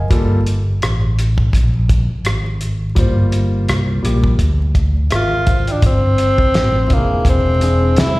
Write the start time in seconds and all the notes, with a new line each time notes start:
Already playing: A#4 D#5
0.10 G1 G3 A#3 F4 A4, kick, closed hi-hat
0.46 closed hi-hat
0.82 A1, cross-stick, closed hi-hat
1.19 closed hi-hat
1.38 kick
1.53 A#1, kick, closed hi-hat
1.89 kick, closed hi-hat
2.10 muted fretless electric bass stroke
2.25 G#1, cross-stick, closed hi-hat
2.61 closed hi-hat
2.95 G1 G3 A#3 F4 C5, kick, closed hi-hat
3.32 closed hi-hat
3.68 C2, cross-stick, closed hi-hat
4.03 A#1 G3 A#3 F4 G4, closed hi-hat
4.24 kick
4.39 D2, kick, closed hi-hat
4.75 kick, closed hi-hat
5.10 G#1 A#4 E5, cross-stick, closed hi-hat
5.15 F4
5.46 C5 F5, kick, closed hi-hat
5.67 D5 G5, closed hi-hat
5.72 D4
5.82 G1 C4, kick, closed hi-hat
6.18 closed hi-hat
6.38 kick
6.54 A1, snare, closed hi-hat
6.87 F1 E3 C4 D4 F4, kick, closed hi-hat
6.93 A#3 G#4
7.25 E1, kick, closed hi-hat
7.29 C4
7.60 E3 C4 D4 G#4, closed hi-hat
7.96 C2 E4, snare, closed hi-hat